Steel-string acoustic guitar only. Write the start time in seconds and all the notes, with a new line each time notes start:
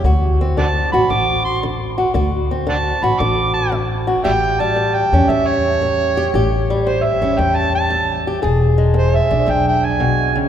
0.05 D3 F#4
0.41 C4
0.57 D3
0.94 F#4
1.10 D3
1.63 D3
1.98 F#4
2.14 D3 F#4
2.51 C4
2.67 D3
3.03 F#4
3.20 D3
3.72 D3
4.07 F#4
4.24 A2 G4
4.60 G3
4.76 A2
5.13 C#4
5.30 A2
5.82 A2
6.17 G4
6.34 A2 G4
6.70 G3
6.87 A2
7.22 C#4
7.38 A2
7.90 A2
8.27 G4
8.42 E2 G#4
8.78 G#3
8.94 E2
9.31 D4
9.46 E2
10.00 B2
10.36 C#3